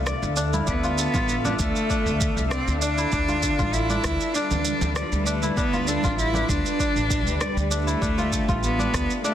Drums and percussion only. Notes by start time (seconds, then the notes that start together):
0.07 cross-stick, shaker
0.23 shaker
0.37 shaker
0.53 high conga, shaker
0.67 kick, shaker
0.84 muted conga, shaker
0.98 shaker
1.14 kick, high conga, low conga, shaker
1.29 shaker
1.44 high conga, low conga, shaker
1.59 kick, shaker
1.76 shaker
1.90 kick, shaker
2.07 shaker
2.21 kick, shaker
2.37 shaker
2.51 cross-stick, shaker
2.68 shaker
2.82 shaker
2.98 shaker
3.12 kick, shaker
3.28 muted conga, shaker
3.43 kick, shaker
3.59 kick, high conga, shaker
3.74 shaker
3.89 high conga, shaker
4.04 kick, cross-stick, shaker
4.20 shaker
4.35 shaker
4.51 low conga, shaker
4.65 muted conga, shaker
4.81 low conga, shaker
4.96 cross-stick, shaker
5.12 shaker
5.27 shaker
5.42 high conga, shaker
5.57 kick, shaker
5.73 muted conga, shaker
5.88 shaker
6.03 kick, high conga, low conga, shaker
6.19 shaker
6.34 high conga, low conga, shaker
6.49 kick, shaker
6.65 muted conga, shaker
6.80 kick, shaker
6.96 shaker
7.10 kick, shaker
7.27 shaker
7.41 cross-stick, shaker
7.58 shaker
7.71 shaker
7.88 shaker
8.02 kick, shaker
8.18 muted conga, shaker
8.33 kick, shaker
8.48 kick, high conga, shaker
8.63 shaker
8.79 high conga, shaker
8.94 kick, cross-stick, shaker
9.10 shaker
9.25 shaker